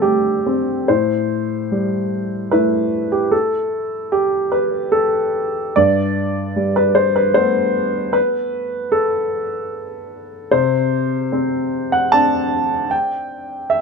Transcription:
0.00 0.84 D3 medium
0.00 0.90 G3 soft
0.00 0.03 A3 soft
0.00 0.72 A3 soft
0.00 0.27 C4 soft
0.00 0.89 G4 medium
0.00 0.91 A4 medium
0.46 0.89 C4 soft
0.88 3.29 A2 medium
0.88 2.51 C5 medium
1.72 3.00 G3 soft
2.51 5.73 A3 soft
2.51 5.73 E4 soft
2.51 3.12 B4 medium
3.12 3.32 G4 medium
3.31 4.12 A4 medium
4.12 4.53 G4 medium
4.52 4.93 B4 medium
4.92 5.75 A4 medium
5.76 8.11 G2 medium
5.76 6.75 D5 medium
6.56 7.83 G3 soft
6.76 6.95 B4 medium
6.95 7.15 C5 medium
7.16 7.35 B4 medium
7.34 10.49 A3 soft
7.34 10.49 B3 medium
7.34 8.14 C5 medium
8.13 8.94 B4 medium
8.92 9.33 A4 medium
10.51 12.87 C3 medium
10.51 11.91 C5 medium
11.32 12.12 C4 medium
11.92 12.12 F#5 medium
12.12 13.81 C4 soft
12.12 13.81 D4 medium
12.12 12.92 A5 loud
12.91 13.71 G5 medium
13.70 13.81 E5 medium

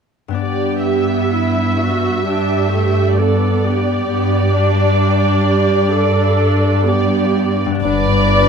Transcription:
0.28 4.18 G2 soft
0.28 4.20 B3 soft
0.32 4.22 D4 soft
0.32 4.24 D5 soft
0.39 4.05 G2 soft
0.39 2.23 B3 soft
0.39 1.30 G4 soft
0.39 0.83 D5 soft
0.87 3.15 E5 soft
1.34 1.81 E4 soft
1.81 2.27 F#4 soft
2.27 2.73 D4 soft
2.27 3.17 G4 soft
2.74 3.18 A3 soft
3.19 4.08 B3 soft
3.19 3.64 A4 soft
3.19 6.86 D5 soft
3.64 5.00 G4 soft
4.09 7.60 G2 medium
4.09 4.54 B3 soft
4.56 5.91 D4 soft
5.01 5.92 G4 soft
5.93 6.85 D4 soft
5.93 6.87 A4 soft
6.87 7.64 B3 soft
6.87 7.64 G4 soft
6.87 7.62 D5 soft
7.66 8.49 G2 soft
7.71 8.49 B3 soft
7.75 8.49 D4 soft
7.79 8.49 D5 soft
7.84 8.49 G1 soft
7.84 8.49 G2 soft
7.84 8.49 D4 soft
7.84 8.49 B4 soft
7.84 8.49 D5 medium
7.84 8.49 D5 soft

